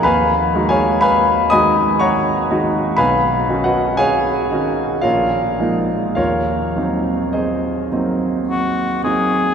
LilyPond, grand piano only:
<<
  \new Staff \with { instrumentName = "Grand piano" } { \time 3/4 \key ees \minor \tempo 4 = 57 \tuplet 3/2 { <ces'' f'' aes'' ces'''>4 <aes' des'' f'' aes''>8 } <ces'' f'' aes'' ces'''>8 <ees'' aes'' ces''' ees'''>8 <des'' ges'' bes'' des'''>8 r8 | \tuplet 3/2 { <b' f'' gis'' b''>4 <fis' b' dis'' fis''>8 } <gis' cis'' f'' gis''>4 <f' bes' des'' f''>4 | <f' bes' des'' f''>4 <aes' c'' ees''>4. r8 | }
  \new Staff \with { instrumentName = "Grand piano" } { \time 3/4 \key ees \minor ees,8 <ees aes ees' ges'>4 <ees aes ees' ges'>4 <ees aes ees' ges'>8 | b,,8 <dis cis' dis' fis'>4 <dis cis' dis' fis'>8 bes,,8 <f aes bes ees'>8 | ees,8 <ges bes c' ees'>4 <ges bes c' ees'>4 <ges bes c' ees'>8 | }
>>